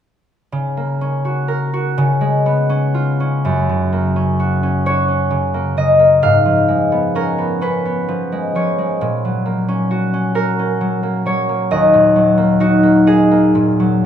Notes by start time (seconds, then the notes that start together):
0.52 C#3
0.77 A#3
1.01 C#4
1.25 F#4
1.48 A#4
1.74 F#4
1.98 C#3
2.21 G#3
2.46 B3
2.70 C#4
2.94 F4
3.20 C#4
3.45 F#2
3.69 C#3
3.93 A#3
4.16 C#4
4.40 F#4
4.63 C#4
4.86 F#4 C#5
5.08 C#4
5.31 C#3
5.54 A#3
5.77 C#3 D#5
5.99 A#3
6.22 G#2 F5
6.46 F3
6.68 G#3
6.92 B3
7.15 C#4 A#4
7.38 B3
7.61 C#4 B4
7.85 B3
8.08 F3
8.32 G#3
8.55 F3 C#5
8.78 G#3
9.01 A#2
9.25 F#3
9.46 A#3
9.68 C#4
9.91 F#4
10.14 C#4
10.35 F#4 A#4
10.59 C#4
10.81 F#3
11.03 A#3
11.26 F#3 C#5
11.49 A#3
11.71 D#2 D#5
11.94 A#2
12.16 F#3
12.38 A#3
12.60 D#4 F#4
12.83 A#3
13.07 D#4 G#4
13.31 A#3
13.55 A#2
13.80 F#3